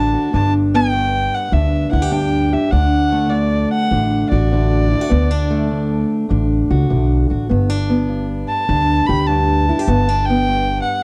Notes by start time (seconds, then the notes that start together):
Already playing: A1 D2 A3 D4 F#4 A5
0.14 F#4
0.33 G1 G2 D4 A5
0.74 B3 G5
0.93 G2
1.35 F#5
1.51 D2 G2 D4 E5
1.91 D2 E4 F#5
2.02 G4
2.11 G2 D4 G5
2.53 G4 E5
2.71 D2 D4 F#5
3.12 A3
3.30 D2 D5
3.71 F#5
3.91 A1 D2 D4
4.30 A1 F#4 D5
4.52 D2 D4
4.92 E4
5.01 F#4
5.09 D2 B3
5.31 D4
5.51 A3
5.71 D2
6.29 A1 D2 D4
6.70 C#2 F#4
6.89 B1 D2 D4
7.30 A1 F#4
7.49 G1 G2 B3
7.70 D4
7.90 B3
8.09 G2
8.48 A5
8.68 D2 G2 D4
9.07 D2 G4 B5
9.27 G2 D4 A5
9.69 E4
9.79 G4
9.86 G1 G2 B3 A5
10.09 D4
10.26 G5
10.30 B3
10.48 G2
10.82 F#5